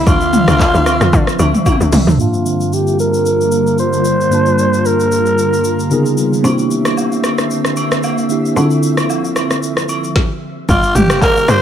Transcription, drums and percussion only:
0.07 kick, high agogo, shaker
0.21 shaker
0.33 mid tom, shaker
0.48 cross-stick, high agogo, shaker
0.60 kick, clap, low woodblock, shaker
0.75 shaker
0.86 cross-stick, high agogo, shaker
1.01 cross-stick, shaker
1.13 kick, shaker
1.27 cross-stick, shaker
1.39 high agogo, shaker
1.54 mid tom, shaker
1.66 kick, high tom, high agogo, low woodblock, shaker
1.81 shaker
1.92 mid tom, open hi-hat, shaker
2.08 floor tom, shaker
2.20 shaker
2.33 shaker
2.46 shaker
2.60 shaker
2.73 shaker
2.87 shaker
2.99 shaker
3.13 shaker
3.26 shaker
3.41 shaker
3.52 shaker
3.67 shaker
3.78 shaker
3.93 shaker
4.05 shaker
4.21 shaker
4.32 shaker
4.46 shaker
4.58 shaker
4.73 shaker
4.85 shaker
5.00 shaker
5.12 shaker
5.26 shaker
5.38 shaker
5.53 shaker
5.64 shaker
5.79 shaker
5.91 shaker
6.06 shaker
6.17 shaker
6.33 shaker
6.44 high agogo, shaker
6.58 shaker
6.71 shaker
6.85 cross-stick, high agogo, shaker
6.97 low woodblock, shaker
7.12 shaker
7.24 cross-stick, high agogo, shaker
7.38 cross-stick, shaker
7.50 shaker
7.65 cross-stick, shaker
7.76 high agogo, shaker
7.92 cross-stick, shaker
8.03 high agogo, low woodblock, shaker
8.18 shaker
8.29 shaker
8.45 shaker
8.56 high agogo, shaker
8.70 shaker
8.83 shaker
8.97 cross-stick, high agogo, shaker
9.10 low woodblock, shaker
9.24 shaker
9.36 cross-stick, high agogo, shaker
9.50 cross-stick, shaker
9.63 shaker
9.77 cross-stick, shaker
9.89 high agogo, shaker
10.04 shaker
10.16 kick, snare
10.69 kick, high agogo, shaker
10.83 shaker
10.95 mid tom, shaker
11.10 cross-stick, high agogo, shaker
11.22 kick, clap, low woodblock, shaker
11.37 shaker
11.48 cross-stick, high agogo, shaker

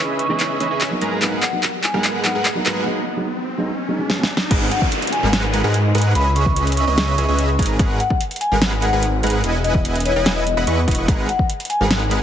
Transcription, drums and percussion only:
0.19 closed hi-hat
0.40 clap, closed hi-hat
0.60 closed hi-hat
0.81 clap, closed hi-hat
1.01 closed hi-hat
1.22 clap, closed hi-hat
1.43 clap, closed hi-hat
1.63 clap, closed hi-hat
1.84 clap, closed hi-hat
2.04 clap, closed hi-hat
2.25 clap, closed hi-hat
2.45 clap, closed hi-hat
2.66 clap, closed hi-hat
4.10 snare
4.23 snare
4.37 snare
4.51 kick, closed hi-hat, crash
4.71 closed hi-hat
4.82 kick
4.92 closed hi-hat
5.02 closed hi-hat
5.07 closed hi-hat
5.13 closed hi-hat
5.33 snare, closed hi-hat
5.54 closed hi-hat
5.74 closed hi-hat
5.95 closed hi-hat
5.98 closed hi-hat
6.02 closed hi-hat
6.15 closed hi-hat
6.36 closed hi-hat
6.46 kick
6.56 closed hi-hat
6.67 closed hi-hat
6.72 closed hi-hat
6.77 closed hi-hat
6.98 snare, closed hi-hat
7.18 closed hi-hat
7.39 closed hi-hat
7.59 kick, closed hi-hat
7.63 closed hi-hat
7.66 closed hi-hat
7.79 kick, closed hi-hat
8.00 closed hi-hat
8.10 kick
8.21 closed hi-hat
8.31 closed hi-hat
8.36 closed hi-hat
8.41 closed hi-hat
8.62 snare, closed hi-hat
8.82 closed hi-hat
9.03 closed hi-hat
9.23 closed hi-hat
9.27 closed hi-hat
9.30 closed hi-hat
9.44 closed hi-hat
9.64 closed hi-hat
9.75 kick
9.85 closed hi-hat
9.96 closed hi-hat
10.00 closed hi-hat
10.06 closed hi-hat
10.26 snare, closed hi-hat
10.47 closed hi-hat
10.67 closed hi-hat
10.88 kick, closed hi-hat
10.91 closed hi-hat
10.95 closed hi-hat
11.08 kick, closed hi-hat
11.29 closed hi-hat
11.39 kick
11.50 closed hi-hat
11.60 closed hi-hat
11.65 closed hi-hat
11.70 closed hi-hat
11.91 snare, closed hi-hat
12.11 closed hi-hat

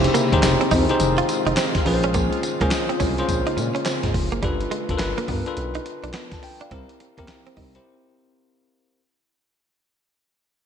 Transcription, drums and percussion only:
0.04 closed hi-hat
0.15 closed hi-hat, tambourine
0.32 kick, closed hi-hat
0.43 snare, clap, closed hi-hat, tambourine
0.61 closed hi-hat
0.71 kick, open hi-hat, tambourine
0.89 closed hi-hat
1.00 closed hi-hat, tambourine
1.18 closed hi-hat
1.29 closed hi-hat, tambourine
1.47 closed hi-hat
1.57 snare, clap, closed hi-hat, tambourine
1.75 kick, snare, closed hi-hat
1.86 open hi-hat
2.04 closed hi-hat
2.14 kick, closed hi-hat, tambourine
2.33 closed hi-hat
2.43 closed hi-hat, tambourine
2.61 kick, closed hi-hat
2.71 snare, clap, closed hi-hat, tambourine
2.90 closed hi-hat
3.00 kick, open hi-hat, tambourine
3.18 closed hi-hat
3.29 kick, closed hi-hat, tambourine
3.47 closed hi-hat
3.58 closed hi-hat, tambourine
3.76 closed hi-hat
3.85 snare, clap, closed hi-hat, tambourine
4.03 kick, snare, closed hi-hat
4.14 kick, open hi-hat
4.32 closed hi-hat
4.43 kick, closed hi-hat
4.61 closed hi-hat
4.72 closed hi-hat
4.89 kick, closed hi-hat
4.99 snare, clap, closed hi-hat
5.18 closed hi-hat
5.28 kick, open hi-hat
5.46 closed hi-hat
5.57 closed hi-hat
5.75 closed hi-hat
5.86 closed hi-hat
6.04 closed hi-hat
6.13 snare, clap, closed hi-hat
6.32 kick, snare, closed hi-hat
6.43 open hi-hat
6.61 closed hi-hat
6.71 kick, closed hi-hat
6.89 closed hi-hat
7.00 closed hi-hat
7.18 kick, closed hi-hat
7.28 snare, clap, closed hi-hat
7.47 closed hi-hat
7.57 kick, open hi-hat
7.75 closed hi-hat

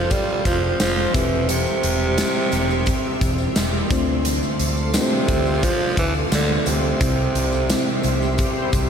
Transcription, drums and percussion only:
0.11 kick, closed hi-hat, tambourine
0.45 kick, closed hi-hat, tambourine
0.80 snare, closed hi-hat, tambourine
1.14 kick, closed hi-hat, tambourine
1.49 closed hi-hat, tambourine
1.67 tambourine
1.83 closed hi-hat, tambourine
2.18 snare, closed hi-hat, tambourine
2.52 closed hi-hat, tambourine
2.71 tambourine
2.86 kick, closed hi-hat, tambourine
3.21 kick, closed hi-hat, tambourine
3.38 tambourine
3.56 snare, closed hi-hat, tambourine
3.91 kick, closed hi-hat, tambourine
4.25 closed hi-hat, tambourine
4.43 tambourine
4.59 closed hi-hat, tambourine
4.77 tambourine
4.94 snare, closed hi-hat, tambourine
5.28 kick, closed hi-hat, tambourine
5.47 tambourine
5.63 kick, closed hi-hat, tambourine
5.97 kick, closed hi-hat, tambourine
6.14 tambourine
6.32 snare, closed hi-hat, tambourine
6.66 closed hi-hat, tambourine
7.01 kick, closed hi-hat, tambourine
7.35 closed hi-hat, tambourine
7.52 tambourine
7.70 snare, closed hi-hat, tambourine
8.03 closed hi-hat, tambourine
8.22 tambourine
8.38 kick, closed hi-hat, tambourine
8.73 kick, closed hi-hat, tambourine

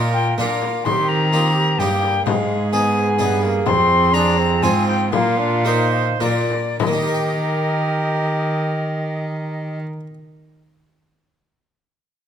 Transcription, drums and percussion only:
0.39 frame drum
0.62 frame drum
0.86 frame drum
1.80 frame drum
2.03 frame drum
2.27 frame drum
3.20 frame drum
3.43 frame drum
3.66 frame drum
4.63 frame drum
4.88 frame drum
5.13 frame drum
6.21 frame drum
6.50 frame drum
6.80 frame drum

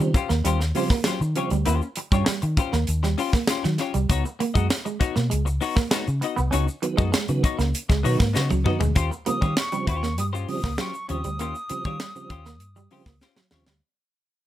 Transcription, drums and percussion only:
0.00 shaker
0.14 kick, closed hi-hat, shaker
0.30 snare, shaker
0.45 closed hi-hat, shaker
0.61 snare, shaker
0.75 open hi-hat, shaker
0.90 kick, snare, shaker
1.04 snare, closed hi-hat, shaker
1.22 shaker
1.36 closed hi-hat
1.50 closed hi-hat, shaker
1.66 closed hi-hat, shaker
1.82 shaker
1.96 closed hi-hat
2.12 kick, shaker
2.26 snare, closed hi-hat, shaker
2.42 closed hi-hat, shaker
2.57 kick, closed hi-hat, shaker
2.73 snare, shaker
2.87 closed hi-hat, shaker
3.03 snare, shaker
3.18 open hi-hat, shaker
3.33 kick, snare, shaker
3.47 snare, closed hi-hat, shaker
3.64 snare, shaker
3.78 snare, closed hi-hat
3.94 closed hi-hat, shaker
4.09 kick, closed hi-hat, shaker
4.26 shaker
4.40 closed hi-hat
4.55 kick, shaker
4.70 snare, closed hi-hat, shaker
4.86 shaker
5.01 kick, closed hi-hat, shaker
5.16 snare, shaker
5.31 closed hi-hat, shaker
5.47 shaker
5.61 open hi-hat, shaker
5.77 kick, snare, shaker
5.91 snare, closed hi-hat, shaker
6.08 shaker
6.22 closed hi-hat
6.37 shaker
6.52 closed hi-hat, shaker
6.68 shaker
6.83 closed hi-hat
6.98 kick, shaker
7.14 snare, closed hi-hat, shaker
7.28 closed hi-hat, shaker
7.44 kick, closed hi-hat, shaker
7.59 snare, shaker
7.75 closed hi-hat, shaker
7.90 kick, snare, shaker
8.05 open hi-hat, shaker
8.20 kick, snare, shaker
8.35 snare, shaker
8.50 high tom, shaker
8.66 mid tom
8.81 floor tom, shaker
8.96 kick, closed hi-hat, shaker
9.12 shaker
9.26 closed hi-hat, shaker
9.42 kick, shaker
9.57 snare, closed hi-hat, shaker
9.72 closed hi-hat, shaker
9.87 kick, closed hi-hat
10.03 snare, shaker
10.18 closed hi-hat, shaker
10.35 shaker
10.49 open hi-hat
10.64 kick, snare, shaker
10.78 snare, closed hi-hat, shaker
10.94 shaker
11.09 closed hi-hat
11.24 closed hi-hat, shaker
11.39 closed hi-hat, shaker
11.55 shaker
11.69 closed hi-hat, shaker
11.85 kick, shaker
12.00 snare, closed hi-hat, shaker
12.16 shaker
12.30 kick, closed hi-hat
12.45 snare, shaker
12.60 closed hi-hat, shaker
12.76 shaker
12.91 open hi-hat
13.06 kick, snare, shaker
13.21 snare, shaker
13.36 snare, shaker
13.51 snare
13.66 snare, shaker

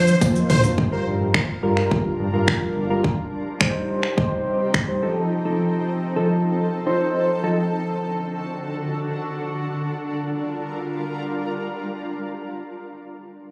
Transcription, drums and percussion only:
0.07 tambourine, shaker
0.21 kick, closed hi-hat, high tom, tambourine, shaker
0.36 shaker
0.50 mid tom, open hi-hat, tambourine, shaker
0.64 floor tom, shaker
0.78 kick
1.34 finger snap, kick
1.77 finger snap
1.91 kick
2.48 finger snap, kick
3.04 kick
3.61 finger snap, kick
4.03 finger snap
4.18 kick
4.74 finger snap, kick

